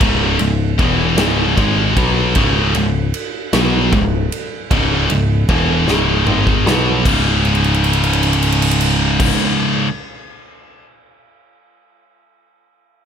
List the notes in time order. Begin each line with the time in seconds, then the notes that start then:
0.00 C#1 C#2 G#2 C#3, kick, ride
0.39 C#1 C#2 G#2, ride
0.78 E1 E2 B2 E3, kick, ride
1.17 C#1 C#2 G#2 C#3, snare, ride
1.57 G#1 G#2 D#3 G#3, kick, ride
1.97 B1 B2 F#3 B3, kick, ride
2.35 C#1 C#2 G#2 C#3, kick, ride
2.75 C#1 C#2 G#2, ride
3.14 ride
3.53 B1 B2 F#3 B3, snare, ride
3.92 C#1 C#2 G#2, kick, ride
4.32 ride
4.71 C#1 C#2 G#2 C#3, kick, ride
5.10 C#1 C#2 G#2, ride
5.49 E1 E2 B2 E3, kick, ride
5.88 C#1 C#2 G#2 C#3, snare
6.26 G#1 G#2 D#3 G#3, mid tom
6.47 kick
6.65 B1 B2 F#3 B3, snare
7.04 C#1 C#2 G#2 C#3, kick, crash
7.45 crash
7.55 ride
7.64 crash
7.74 ride
7.84 crash
7.93 ride
8.04 crash
8.13 ride
8.23 crash
8.33 ride
8.43 crash
8.52 ride
8.62 crash
8.71 ride
8.81 crash
9.20 kick, crash